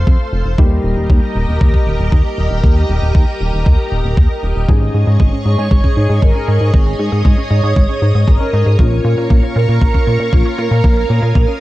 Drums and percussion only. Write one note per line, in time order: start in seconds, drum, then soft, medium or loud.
0.07 kick loud
0.58 kick loud
1.10 kick loud
1.61 kick loud
1.74 kick medium
2.12 kick loud
2.64 kick loud
3.15 kick loud
3.66 kick loud
4.17 kick loud
4.69 kick loud
5.20 kick loud
5.71 kick loud
5.84 kick medium
6.22 kick loud
6.74 kick loud
7.25 kick loud
7.76 kick loud
8.28 kick loud
8.79 kick loud
9.30 kick loud
9.82 kick loud
9.94 kick medium
10.33 kick loud
10.84 kick loud
11.35 kick loud